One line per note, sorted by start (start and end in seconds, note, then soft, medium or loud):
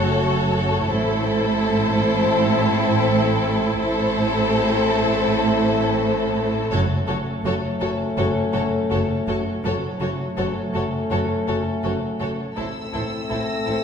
0.00 0.82 F#1 medium
0.00 0.82 F#2 medium
0.00 0.83 A3 medium
0.00 0.83 C#4 medium
0.00 0.82 F#4 medium
0.00 0.81 A4 medium
0.00 0.82 C#5 medium
0.86 3.75 A1 medium
0.86 3.75 A2 medium
0.86 3.63 A3 medium
0.86 3.63 C4 medium
0.86 3.74 E4 medium
0.86 3.74 A4 medium
0.86 3.78 C5 medium
3.79 6.67 A1 medium
3.79 6.67 A2 medium
3.79 6.68 A3 medium
3.79 6.68 C4 medium
3.79 6.67 E4 medium
3.79 6.67 A4 medium
3.79 6.68 C5 medium
6.71 6.80 F#1 medium
6.71 6.80 F#2 medium
6.71 9.60 A3 medium
6.71 9.60 C#4 medium
6.71 6.80 F#4 medium
6.71 6.79 A4 medium
6.71 6.79 C#5 medium
7.07 7.17 F#1 medium
7.07 7.16 F#2 medium
7.07 7.16 F#4 medium
7.07 7.15 A4 medium
7.07 7.17 C#5 medium
7.44 7.52 F#1 medium
7.44 7.53 F#2 medium
7.44 7.53 F#4 soft
7.44 7.54 A4 medium
7.44 7.54 C#5 medium
7.81 7.89 F#1 medium
7.81 7.89 F#2 medium
7.81 7.89 F#4 medium
7.81 7.89 A4 medium
7.81 7.90 C#5 soft
8.17 8.26 F#1 medium
8.17 8.25 F#2 medium
8.17 8.25 F#4 medium
8.17 8.26 A4 medium
8.17 8.26 C#5 medium
8.53 8.63 F#1 medium
8.53 8.61 F#2 medium
8.53 8.61 F#4 medium
8.53 8.61 A4 medium
8.53 8.63 C#5 soft
8.90 9.00 F#1 medium
8.90 8.98 F#2 medium
8.90 8.98 F#4 soft
8.90 8.98 A4 soft
8.90 9.00 C#5 medium
9.26 9.36 F#1 medium
9.26 9.34 F#2 soft
9.26 9.36 F#4 soft
9.26 9.36 A4 medium
9.26 9.37 C#5 soft
9.63 9.73 F#1 medium
9.63 9.71 F#2 medium
9.63 12.40 A3 medium
9.63 12.40 C#4 medium
9.63 9.72 F#4 medium
9.63 9.73 A4 medium
9.63 9.74 C#5 medium
10.00 10.09 F#1 medium
10.00 10.08 F#2 medium
10.00 10.08 F#4 medium
10.00 10.08 A4 soft
10.00 10.10 C#5 medium
10.37 10.46 F#1 medium
10.37 10.45 F#2 medium
10.37 10.46 F#4 soft
10.37 10.45 A4 medium
10.37 10.46 C#5 medium
10.73 10.82 F#1 medium
10.73 10.81 F#2 medium
10.73 10.82 F#4 soft
10.73 10.82 A4 soft
10.73 10.83 C#5 soft
11.10 11.20 F#1 medium
11.10 11.18 F#2 medium
11.10 11.19 F#4 medium
11.10 11.19 A4 soft
11.10 11.19 C#5 soft
11.47 11.56 F#1 soft
11.47 11.56 F#2 soft
11.47 11.56 F#4 soft
11.47 11.56 A4 medium
11.47 11.55 C#5 soft
11.83 11.93 F#1 medium
11.83 11.92 F#2 medium
11.83 11.91 F#4 soft
11.83 11.91 A4 soft
11.83 11.93 C#5 soft
12.20 12.29 F#1 soft
12.20 12.29 F#2 soft
12.20 12.28 F#4 soft
12.20 12.28 A4 soft
12.20 12.29 C#5 soft
12.56 12.66 A1 medium
12.56 12.65 A2 medium
12.56 13.84 A3 medium
12.56 13.84 C4 soft
12.56 12.64 E4 soft
12.56 12.65 A4 soft
12.56 12.66 C5 soft
12.56 13.84 E6 soft
12.93 13.03 A1 soft
12.93 13.02 A2 soft
12.93 13.01 E4 soft
12.93 13.01 A4 soft
12.93 13.03 C5 soft
13.29 13.39 A1 soft
13.29 13.38 A2 soft
13.29 13.37 E4 soft
13.29 13.38 A4 soft
13.29 13.39 C5 soft
13.29 13.84 A#6 soft
13.66 13.75 A1 soft
13.66 13.75 A2 soft
13.66 13.74 E4 soft
13.66 13.74 A4 soft
13.66 13.77 C5 soft